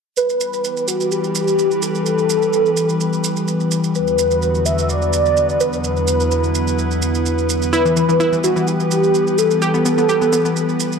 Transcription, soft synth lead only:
0.17 0.89 B4 loud
0.88 1.13 F#4 loud
1.11 1.84 G4 loud
1.82 3.71 A4 loud
3.95 4.67 B4 loud
4.66 4.91 E5 loud
4.89 5.62 D5 loud
5.60 7.02 B4 loud
7.73 8.40 B4 loud
8.44 8.69 F#4 medium
8.67 9.40 G4 loud
9.38 10.99 A4 loud

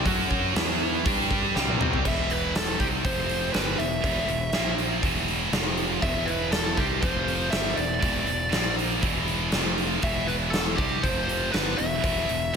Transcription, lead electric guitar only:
2.08 2.31 E5 medium
2.31 2.56 B4 loud
2.57 2.79 A4 medium
2.80 2.87 G4 medium
3.05 3.51 C5 medium
3.53 3.79 B4 medium
3.78 4.74 E5 medium
6.02 6.29 E5 loud
6.26 6.52 B4 medium
6.52 6.79 A4 medium
6.77 7.03 G4 medium
7.01 7.49 C5 medium
7.50 7.77 E5 medium
7.77 8.74 D5 medium
10.04 10.27 E5 medium
10.27 10.34 B4 medium
10.50 10.78 A4 medium
10.76 11.03 G4 medium
11.03 11.52 C5 medium
11.52 11.79 B4 medium
11.77 12.56 E5 medium

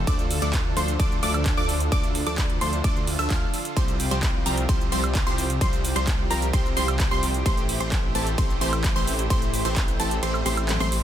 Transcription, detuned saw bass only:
0.07 0.40 D2 medium
0.42 0.74 D2 medium
0.77 0.97 D2 loud
1.00 1.20 D2 loud
1.23 1.55 D2 loud
1.57 1.90 D2 loud
1.92 2.24 D2 loud
2.27 2.59 D2 loud
2.61 2.82 D2 loud
2.84 3.17 D2 loud
3.19 3.28 D2 medium
3.30 3.45 D2 medium
3.77 4.09 C2 loud
4.11 4.44 C2 loud
4.46 4.67 C2 medium
4.69 4.90 C2 loud
4.92 5.24 C2 loud
5.27 5.59 C2 loud
5.61 5.93 C2 loud
5.96 6.28 C2 loud
6.30 6.51 C2 medium
6.53 6.74 C2 loud
6.76 7.09 C2 loud
7.11 7.43 C2 loud
7.46 7.78 A1 loud
7.80 8.13 A1 loud
8.15 8.36 A1 loud
8.38 8.59 A1 loud
8.61 8.93 A1 loud
8.96 9.28 A1 loud
9.30 9.63 A1 loud
9.65 9.97 A1 loud
10.00 10.20 A1 loud
10.23 10.43 A1 medium
10.46 10.78 A1 loud
10.80 11.03 A1 loud

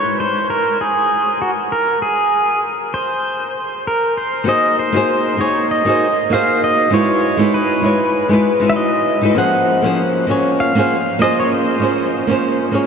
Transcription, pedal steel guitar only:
0.00 0.20 C#5 loud
0.20 0.50 C5 medium
0.50 0.81 A#4 medium
0.81 1.43 G#4 medium
1.42 1.50 F#4 medium
1.72 2.00 A#4 medium
2.02 2.59 G#4 medium
2.94 3.87 C5 medium
3.87 4.18 A#4 medium
4.17 4.45 C5 medium
4.49 4.79 D#5 loud
4.79 5.40 C5 medium
5.41 5.71 C#5 medium
5.71 6.32 D#5 medium
6.33 6.63 F5 medium
6.64 6.91 D#5 medium
6.94 7.56 C#5 medium
7.54 8.73 B4 medium
8.70 8.76 E5 medium
8.76 9.39 D#5 medium
9.38 10.25 F#5 medium
10.60 11.21 F5 loud
11.22 11.37 D#5 loud
11.40 11.51 C#5 medium
11.53 12.70 C5 medium

